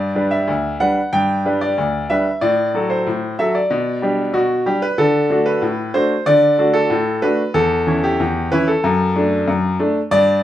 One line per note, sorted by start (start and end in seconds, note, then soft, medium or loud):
0.00 0.10 G2 medium
0.00 0.31 D5 medium
0.15 0.33 G3 soft
0.15 0.33 D4 soft
0.15 0.34 B4 soft
0.31 0.80 E5 medium
0.47 0.75 D2 medium
0.80 0.98 G3 soft
0.80 0.98 D4 soft
0.80 0.99 B4 soft
0.80 1.12 F#5 medium
1.13 1.40 G2 medium
1.13 1.61 G5 medium
1.45 1.63 G3 soft
1.45 1.63 D4 soft
1.45 1.63 B4 soft
1.61 2.09 D5 medium
1.78 2.05 D2 medium
2.10 2.27 G3 soft
2.10 2.28 D4 soft
2.10 2.28 B4 soft
2.10 2.41 E5 medium
2.41 2.69 A2 medium
2.41 2.89 D5 medium
2.74 2.92 F#3 soft
2.74 2.92 F#4 soft
2.74 2.92 A4 soft
2.90 3.38 C5 medium
3.07 3.33 A2 medium
3.39 3.56 F#3 soft
3.39 3.56 F#4 soft
3.39 3.57 A4 soft
3.39 3.54 E5 medium
3.55 4.02 D5 medium
3.70 3.97 B2 medium
4.02 4.20 G3 soft
4.02 4.20 D4 soft
4.02 4.20 G4 soft
4.33 4.61 B2 medium
4.33 4.66 F#4 medium
4.66 4.84 G3 soft
4.66 4.84 D4 soft
4.66 4.82 G4 medium
4.82 4.98 B4 medium
4.98 5.25 D3 medium
4.98 5.46 A4 medium
5.30 5.48 A3 soft
5.30 5.48 D4 soft
5.30 5.48 F#4 medium
5.46 5.94 B4 medium
5.62 5.89 A2 medium
5.94 6.12 A3 soft
5.94 6.12 D4 soft
5.94 6.13 F#4 soft
5.94 6.26 C5 medium
6.26 6.54 D3 medium
6.26 6.74 D5 medium
6.58 6.76 A3 soft
6.58 6.76 D4 soft
6.58 6.77 F#4 medium
6.74 7.22 A4 medium
6.90 7.18 A2 medium
7.22 7.40 A3 soft
7.22 7.40 D4 soft
7.22 7.40 F#4 soft
7.22 7.54 B4 medium
7.54 7.82 E2 medium
7.54 8.03 A4 medium
7.87 8.04 E3 soft
7.87 8.05 C#4 soft
7.87 8.05 E4 medium
8.03 8.51 G4 medium
8.20 8.47 E2 medium
8.52 8.69 E3 soft
8.52 8.70 C#4 soft
8.52 8.70 E4 medium
8.52 8.67 B4 medium
8.68 9.16 A4 medium
8.84 9.11 F#2 medium
9.16 9.33 A3 soft
9.16 9.33 D4 medium
9.47 9.75 F#2 medium
9.79 9.97 A3 medium
9.79 9.97 D4 medium
10.11 10.39 G2 medium
10.11 10.43 D5 loud